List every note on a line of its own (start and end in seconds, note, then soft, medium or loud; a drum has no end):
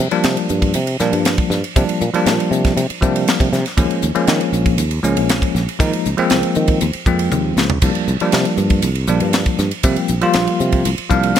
0.00 0.10 C3 medium
0.11 0.78 F3 medium
0.11 0.78 G3 medium
0.11 0.78 A#3 medium
0.11 0.78 D4 medium
0.11 muted fretless electric bass stroke soft
0.11 ride medium
0.24 0.35 C3 medium
0.24 snare loud
0.24 hi-hat pedal medium
0.24 ride medium
0.37 ride medium
0.49 0.72 G2 medium
0.49 hi-hat pedal medium
0.62 kick medium
0.62 ride medium
0.74 0.97 C3 medium
0.74 hi-hat pedal medium
0.74 ride medium
0.87 ride medium
1.00 1.11 A#2 medium
1.00 1.57 F3 medium
1.00 1.57 G3 medium
1.00 1.57 A#3 medium
1.00 1.58 D4 medium
1.00 snare soft
1.00 hi-hat pedal medium
1.13 1.35 G2 medium
1.13 ride medium
1.25 snare loud
1.25 hi-hat pedal medium
1.25 ride medium
1.38 kick medium
1.38 ride medium
1.50 1.61 G2 loud
1.50 snare soft
1.50 hi-hat pedal medium
1.64 ride medium
1.76 1.87 C3 medium
1.76 2.04 F3 medium
1.76 2.04 G3 medium
1.76 2.05 A#3 medium
1.76 2.05 D4 medium
1.76 kick loud
1.76 hi-hat pedal medium
1.76 ride medium
1.89 ride medium
2.01 2.12 A#2 medium
2.01 hi-hat pedal medium
2.14 2.80 F3 medium
2.14 2.81 G3 medium
2.14 2.81 A#3 medium
2.14 2.81 D4 loud
2.14 muted fretless electric bass stroke soft
2.14 ride medium
2.26 2.37 A#2 medium
2.26 snare medium
2.26 hi-hat pedal medium
2.26 ride medium
2.40 ride medium
2.51 2.73 C3 medium
2.51 hi-hat pedal medium
2.65 kick medium
2.65 snare soft
2.65 ride medium
2.77 2.88 C3 loud
2.77 hi-hat pedal medium
2.77 ride medium
2.90 muted fretless electric bass stroke soft
2.90 ride medium
3.01 3.24 C3 medium
3.01 3.59 F3 medium
3.01 3.59 G3 medium
3.01 3.59 A#3 medium
3.01 3.60 D4 medium
3.01 kick medium
3.01 hi-hat pedal medium
3.16 ride medium
3.28 snare loud
3.28 hi-hat pedal medium
3.28 ride medium
3.40 3.51 C3 medium
3.40 kick medium
3.40 ride medium
3.53 3.64 C3 medium
3.53 snare soft
3.53 hi-hat pedal medium
3.66 snare soft
3.66 ride medium
3.77 3.89 D#2 medium
3.77 4.06 F3 medium
3.77 4.06 G#3 medium
3.77 4.07 A#3 medium
3.77 4.07 C#4 medium
3.77 kick loud
3.77 hi-hat pedal medium
3.77 ride medium
3.90 muted fretless electric bass stroke soft
3.90 ride medium
4.02 4.14 D#2 medium
4.02 hi-hat pedal medium
4.15 4.82 F3 medium
4.15 4.82 G#3 medium
4.15 4.82 A#3 medium
4.15 4.82 C#4 medium
4.15 muted fretless electric bass stroke soft
4.15 ride medium
4.27 4.39 D#3 medium
4.27 snare loud
4.27 hi-hat pedal medium
4.27 ride medium
4.41 ride medium
4.53 4.75 A#1 medium
4.53 hi-hat pedal medium
4.66 kick medium
4.66 ride medium
4.78 5.00 D#2 medium
4.78 hi-hat pedal medium
4.78 ride medium
4.91 ride medium
5.03 5.15 C#2 medium
5.03 5.61 F3 medium
5.03 5.61 G#3 medium
5.03 5.61 A#3 medium
5.03 5.62 C#4 medium
5.03 hi-hat pedal medium
5.17 5.39 A#1 medium
5.17 ride medium
5.29 snare loud
5.29 hi-hat pedal medium
5.29 ride medium
5.42 kick medium
5.42 ride medium
5.55 5.66 A#1 medium
5.55 snare soft
5.55 hi-hat pedal medium
5.69 ride medium
5.79 5.91 D#3 loud
5.79 6.08 F3 medium
5.79 6.08 G#3 medium
5.79 6.09 A#3 medium
5.79 6.09 D#4 medium
5.79 kick loud
5.79 hi-hat pedal medium
5.79 ride medium
5.93 muted fretless electric bass stroke soft
5.93 ride medium
6.05 6.17 C#2 medium
6.05 hi-hat pedal medium
6.18 6.84 F3 medium
6.18 6.85 G#3 medium
6.18 6.85 A#3 medium
6.18 6.85 C4 loud
6.18 muted fretless electric bass stroke soft
6.18 ride medium
6.30 6.42 C#2 medium
6.30 snare loud
6.30 hi-hat pedal medium
6.30 ride medium
6.43 ride medium
6.55 6.78 D#3 medium
6.55 hi-hat pedal medium
6.68 kick medium
6.68 ride medium
6.81 6.93 D#2 loud
6.81 hi-hat pedal medium
6.81 ride medium
6.93 muted fretless electric bass stroke soft
6.93 ride medium
7.06 7.29 F2 medium
7.06 7.64 F3 medium
7.06 7.64 G#3 medium
7.06 7.64 A#3 medium
7.06 7.64 C4 medium
7.06 kick medium
7.06 hi-hat pedal medium
7.19 ride medium
7.32 7.55 D#2 medium
7.32 hi-hat pedal medium
7.32 high tom medium
7.57 7.80 C#2 medium
7.57 snare medium
7.57 hi-hat pedal medium
7.70 floor tom medium
7.82 7.94 C2 medium
7.82 8.11 F3 medium
7.82 8.12 G3 medium
7.82 8.12 A#3 medium
7.82 8.12 D4 medium
7.82 kick medium
7.82 hi-hat pedal medium
7.82 ride medium
7.82 crash medium
7.95 ride medium
8.07 8.19 C2 medium
8.07 hi-hat pedal medium
8.20 8.88 F3 medium
8.20 8.88 G3 medium
8.20 8.88 A#3 medium
8.20 8.88 D4 medium
8.20 muted fretless electric bass stroke soft
8.20 ride medium
8.32 8.44 C3 medium
8.32 snare loud
8.32 hi-hat pedal medium
8.32 ride medium
8.45 ride medium
8.57 8.80 G2 medium
8.57 hi-hat pedal medium
8.70 kick medium
8.70 ride medium
8.82 9.05 C2 medium
8.82 hi-hat pedal medium
8.82 ride medium
8.95 ride medium
9.07 9.20 A#1 medium
9.07 9.66 F3 medium
9.07 9.66 G3 medium
9.07 9.66 A#3 medium
9.07 9.66 D4 medium
9.07 hi-hat pedal medium
9.20 9.43 G2 medium
9.20 ride medium
9.33 snare loud
9.33 hi-hat pedal medium
9.33 ride medium
9.46 kick medium
9.46 ride medium
9.58 9.70 G2 medium
9.58 snare soft
9.58 hi-hat pedal medium
9.71 ride medium
9.83 9.95 C3 medium
9.83 10.13 F3 medium
9.83 10.13 G3 medium
9.83 10.13 A#3 medium
9.83 10.13 C4 medium
9.83 kick loud
9.83 hi-hat pedal medium
9.83 ride medium
9.96 muted fretless electric bass stroke soft
9.96 ride medium
10.08 10.21 A#1 medium
10.08 hi-hat pedal medium
10.21 10.89 F3 medium
10.21 10.89 G3 medium
10.21 10.89 A#3 medium
10.21 10.90 F4 loud
10.21 muted fretless electric bass stroke soft
10.21 ride medium
10.33 10.46 A#1 medium
10.33 snare loud
10.33 hi-hat pedal medium
10.33 ride medium
10.47 ride medium
10.60 10.82 C3 medium
10.60 hi-hat pedal medium
10.72 kick medium
10.72 ride medium
10.85 10.97 C2 medium
10.85 hi-hat pedal medium
10.85 ride medium
10.98 muted fretless electric bass stroke soft
10.98 ride medium
11.10 11.33 C2 medium
11.10 11.40 F3 medium
11.10 11.40 G3 medium
11.10 11.40 A#3 medium
11.10 11.40 D4 medium
11.10 11.34 F5 medium
11.10 kick medium
11.10 hi-hat pedal medium
11.23 ride medium
11.35 11.40 F5 medium
11.35 snare loud
11.35 hi-hat pedal medium
11.35 ride medium